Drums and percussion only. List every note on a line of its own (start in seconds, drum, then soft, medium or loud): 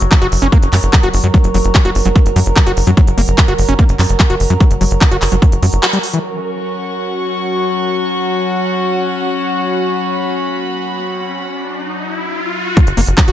0.01 closed hi-hat medium
0.12 kick loud
0.12 clap loud
0.12 closed hi-hat medium
0.22 closed hi-hat medium
0.32 open hi-hat loud
0.42 closed hi-hat medium
0.52 kick loud
0.52 closed hi-hat medium
0.63 closed hi-hat medium
0.73 clap medium
0.73 open hi-hat loud
0.83 closed hi-hat medium
0.93 kick loud
0.93 clap loud
0.93 closed hi-hat medium
1.03 closed hi-hat medium
1.14 open hi-hat loud
1.24 closed hi-hat medium
1.34 kick loud
1.34 closed hi-hat medium
1.44 closed hi-hat medium
1.54 open hi-hat loud
1.65 closed hi-hat medium
1.75 kick loud
1.75 clap loud
1.75 closed hi-hat medium
1.85 closed hi-hat medium
1.95 open hi-hat loud
2.05 closed hi-hat medium
2.16 kick loud
2.16 closed hi-hat medium
2.26 closed hi-hat medium
2.36 open hi-hat loud
2.46 closed hi-hat medium
2.56 kick loud
2.56 clap loud
2.56 closed hi-hat medium
2.67 closed hi-hat medium
2.77 open hi-hat loud
2.87 closed hi-hat medium
2.97 kick loud
2.97 closed hi-hat medium
3.07 closed hi-hat medium
3.18 open hi-hat loud
3.28 closed hi-hat medium
3.38 kick loud
3.38 clap loud
3.38 closed hi-hat medium
3.48 closed hi-hat medium
3.58 open hi-hat loud
3.69 closed hi-hat medium
3.79 kick loud
3.79 closed hi-hat medium
3.89 closed hi-hat medium
3.99 clap medium
3.99 open hi-hat loud
4.09 closed hi-hat medium
4.20 kick loud
4.20 clap loud
4.20 closed hi-hat medium
4.30 closed hi-hat medium
4.40 open hi-hat loud
4.50 closed hi-hat medium
4.60 kick loud
4.60 closed hi-hat medium
4.71 closed hi-hat medium
4.81 open hi-hat loud
4.91 closed hi-hat medium
5.01 kick loud
5.01 clap loud
5.01 closed hi-hat medium
5.11 closed hi-hat medium
5.22 clap medium
5.22 open hi-hat loud
5.32 closed hi-hat medium
5.42 kick loud
5.42 closed hi-hat medium
5.52 closed hi-hat medium
5.63 open hi-hat loud
5.73 closed hi-hat medium
5.83 clap loud
5.83 closed hi-hat medium
5.93 closed hi-hat medium
6.03 open hi-hat loud
6.14 closed hi-hat medium
12.77 kick loud
12.77 closed hi-hat medium
12.87 closed hi-hat medium
12.97 open hi-hat loud
13.07 closed hi-hat medium
13.18 kick loud
13.18 clap loud
13.18 closed hi-hat medium
13.28 closed hi-hat medium